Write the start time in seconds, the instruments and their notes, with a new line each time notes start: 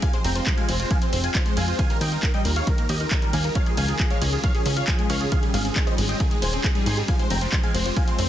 Already playing: ambient pad G#3 C4
0.02 synth pluck F3, ambient pad F4, supersaw synth F5 G#5, kick, closed hi-hat
0.13 synth pluck G#3, supersaw synth C5, closed hi-hat
0.24 analog synth bass F1, synth pluck C4, supersaw synth G5 A#5, open hi-hat, ride
0.35 synth pluck F4, supersaw synth C5, closed hi-hat
0.47 synth pluck F3, supersaw synth C5, kick, clap, closed hi-hat
0.58 synth pluck G#3, supersaw synth F5 G#5, closed hi-hat
0.69 analog synth bass F1, synth pluck C4, supersaw synth C5, open hi-hat, ride
0.80 synth pluck F4, supersaw synth C5, closed hi-hat
0.91 synth pluck F3, supersaw synth F5 G#5, kick, closed hi-hat
1.02 synth pluck C4, supersaw synth C5, closed hi-hat
1.13 analog synth bass F1, synth pluck C4, supersaw synth C5, open hi-hat, ride
1.24 synth pluck F4, supersaw synth F5 G#5, closed hi-hat
1.35 synth pluck F3, supersaw synth C5, kick, clap, closed hi-hat
1.46 synth pluck G#3, supersaw synth C5, closed hi-hat
1.57 analog synth bass F1, synth pluck C4, supersaw synth F5 G#5, open hi-hat, ride
1.68 synth pluck F4, supersaw synth C5, closed hi-hat
1.79 synth pluck D#3, ambient pad D#3 D#4 G4 A#4, supersaw synth F5 G#5, kick, closed hi-hat
1.90 synth pluck G3, supersaw synth A#4, closed hi-hat
2.01 analog synth bass D#2, synth pluck A#3, supersaw synth D#5 G5, open hi-hat, ride
2.12 synth pluck D#4, supersaw synth A#4, closed hi-hat
2.23 synth pluck D#3, supersaw synth A#4, kick, clap, closed hi-hat
2.34 synth pluck G3, supersaw synth D#5 G5, closed hi-hat
2.45 analog synth bass D#2, synth pluck A#3, supersaw synth A#4, open hi-hat, ride
2.56 synth pluck D#4, supersaw synth C#5 F5, closed hi-hat
2.67 synth pluck D#3, supersaw synth A#4, kick, closed hi-hat
2.78 synth pluck A#3, supersaw synth A#4, closed hi-hat
2.89 analog synth bass D#2, synth pluck A#3, supersaw synth G4 D#5, open hi-hat, ride
3.00 synth pluck D#4, supersaw synth A#4, closed hi-hat
3.11 synth pluck D#3, supersaw synth A#4, kick, clap, closed hi-hat
3.22 synth pluck G3, supersaw synth A#4, closed hi-hat
3.33 analog synth bass D#2, synth pluck A#3, supersaw synth F5 G#5, open hi-hat, ride
3.44 synth pluck D#4, supersaw synth A#4, closed hi-hat
3.55 ambient pad C#3 C#4 F4 G#4, synth pluck F3, supersaw synth C#5 F5, kick, closed hi-hat
3.66 synth pluck G#3, supersaw synth G#4, closed hi-hat
3.77 analog synth bass C#2, synth pluck C#4, supersaw synth F5 G#5, open hi-hat, ride
3.88 synth pluck F4, supersaw synth G#4, closed hi-hat
3.99 synth pluck F3, supersaw synth G#4, kick, clap, closed hi-hat
4.11 synth pluck G#3, supersaw synth C#5 F5, closed hi-hat
4.22 analog synth bass C#2, synth pluck C#4, supersaw synth G#4, open hi-hat, ride
4.32 synth pluck F4, supersaw synth G#4, closed hi-hat
4.43 synth pluck F3, supersaw synth C#5 F5, kick, closed hi-hat
4.55 synth pluck C#4, supersaw synth G#4, closed hi-hat
4.65 analog synth bass C#2, synth pluck C#4, supersaw synth G#4, open hi-hat, ride
4.76 synth pluck F4, supersaw synth C#5 F5, closed hi-hat
4.88 synth pluck F3, supersaw synth G#4, kick, clap, closed hi-hat
4.99 synth pluck G#3, supersaw synth G#4, closed hi-hat
5.10 analog synth bass C#2, synth pluck C#4, supersaw synth C#5 F5, open hi-hat, ride
5.21 synth pluck F4, supersaw synth G#4, closed hi-hat
5.32 synth pluck D#3, ambient pad G#3 C4 G4, supersaw synth G#4 F5, kick, closed hi-hat
5.43 synth pluck G3, supersaw synth G#4, closed hi-hat
5.54 analog synth bass G#1, synth pluck G#3, supersaw synth G#4 F5, open hi-hat, ride
5.65 synth pluck C4, supersaw synth G#4, closed hi-hat
5.76 synth pluck D#3, supersaw synth G#4, kick, clap, closed hi-hat
5.87 synth pluck G3, supersaw synth C5 D#5, closed hi-hat
5.98 analog synth bass G#1, synth pluck G#3, supersaw synth G#4, open hi-hat, ride
6.09 synth pluck C4, supersaw synth D#5 G5, closed hi-hat
6.20 synth pluck D#3, supersaw synth G#4, kick, closed hi-hat
6.31 synth pluck G#3, supersaw synth G#4, closed hi-hat
6.42 analog synth bass D#1, synth pluck G#3, supersaw synth C5 G#5, open hi-hat, ride
6.53 synth pluck C4, supersaw synth G#4, closed hi-hat
6.64 synth pluck D#4, supersaw synth G#4, kick, clap, closed hi-hat
6.75 synth pluck G3, supersaw synth G#4, closed hi-hat
6.86 analog synth bass G#1, synth pluck D#4, supersaw synth G#5 C6, open hi-hat, ride
6.97 synth pluck G3, supersaw synth G#4, closed hi-hat
7.08 synth pluck F3, ambient pad F4, supersaw synth F5 G#5, kick, closed hi-hat
7.19 synth pluck G#3, supersaw synth C5, closed hi-hat
7.30 analog synth bass F1, synth pluck C4, supersaw synth G5 A#5, open hi-hat, ride
7.41 synth pluck F4, supersaw synth C5, closed hi-hat
7.52 synth pluck F3, supersaw synth C5, kick, clap, closed hi-hat
7.63 synth pluck G#3, supersaw synth F5 G#5, closed hi-hat
7.74 analog synth bass F1, synth pluck C4, supersaw synth C5, open hi-hat, ride
7.86 synth pluck F4, supersaw synth C5, closed hi-hat
7.97 synth pluck F3, supersaw synth F5 G#5, kick, closed hi-hat
8.08 synth pluck C4, supersaw synth C5, closed hi-hat
8.19 analog synth bass F1, synth pluck C4, supersaw synth C5, open hi-hat, ride